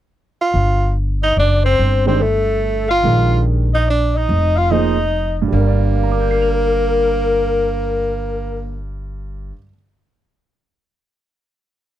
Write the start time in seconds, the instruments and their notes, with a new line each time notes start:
0.41 tenor saxophone F4
0.54 upright bass G1
1.23 tenor saxophone D#4, alto saxophone D#5
1.37 upright bass F#1, tenor saxophone D4, alto saxophone D5
1.64 tenor saxophone C4, alto saxophone C5
1.79 upright bass G1
2.06 grand piano D#3 G#3 D4 G4 C5, tenor saxophone C4, alto saxophone C5
2.20 tenor saxophone A3, alto saxophone A4
2.89 tenor saxophone F4, alto saxophone F5
3.03 upright bass A#1, grand piano D#3 G#3 D4 G4 A#4
3.74 tenor saxophone D#4, alto saxophone D#5
3.87 tenor saxophone D4, alto saxophone D5
4.15 tenor saxophone D#4, alto saxophone D#5
4.29 upright bass F1
4.56 tenor saxophone F4, alto saxophone F5
4.71 grand piano F3 A#3 D#4 G#4 C5, tenor saxophone D#4, alto saxophone D#5
5.42 grand piano G2
5.48 grand piano G3
5.52 upright bass G1, tenor saxophone A#3, grand piano D4, alto saxophone A#4
5.60 grand piano A#4
5.67 grand piano D5
5.96 grand piano F5
6.03 grand piano A#5
6.12 grand piano D6
6.20 grand piano G6
6.31 grand piano C7
6.41 grand piano F7